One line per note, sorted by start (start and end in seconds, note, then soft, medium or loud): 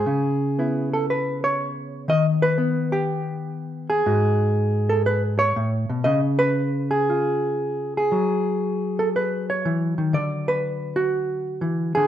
0.00 0.91 G#4 medium
0.06 2.09 C#3 medium
0.59 2.58 B3 soft
0.59 2.08 E4 soft
0.93 1.09 A4 medium
1.10 1.44 B4 medium
1.44 2.09 C#5 medium
2.08 4.04 D#3 medium
2.08 2.26 D#5 medium
2.42 2.91 B4 medium
2.58 4.06 B3 soft
2.92 4.07 G4 medium
3.90 5.38 G#4 medium
4.06 5.55 G#2 medium
4.06 6.04 F#4 soft
4.89 5.05 A4 medium
5.06 5.22 B4 medium
5.39 6.04 C#5 medium
5.56 5.89 A2 medium
5.89 6.05 B2 medium
6.04 8.12 C#3 medium
6.04 6.20 D#5 medium
6.39 7.43 B4 medium
6.91 7.95 G#4 medium
7.10 8.11 F4 soft
7.97 9.50 G#4 medium
8.12 12.07 F#3 medium
8.99 9.09 A4 medium
9.16 9.49 B4 medium
9.50 10.15 C#5 medium
9.65 9.98 E3 medium
9.98 10.14 D#3 medium
10.13 11.96 D3 medium
10.13 10.97 D5 medium
10.48 11.46 B4 medium
10.96 12.07 F#4 medium
11.61 11.96 E3 soft
11.95 12.07 D3 medium
11.95 12.07 G#4 loud